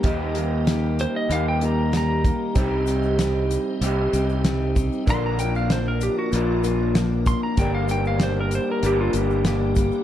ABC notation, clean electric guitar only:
X:1
M:4/4
L:1/8
Q:1/4=96
K:Cm
V:1 name="Clean electric guitar"
[E,G,B,EG]4 [E,G,B,EG]4 | [C,G,CEG]4 [C,G,CEG]4 | [B,,D,F,B,DB]4 [B,,D,F,B,DB]4 | [G,,D,G,B,DB]4 [G,,D,G,B,DB]4 |]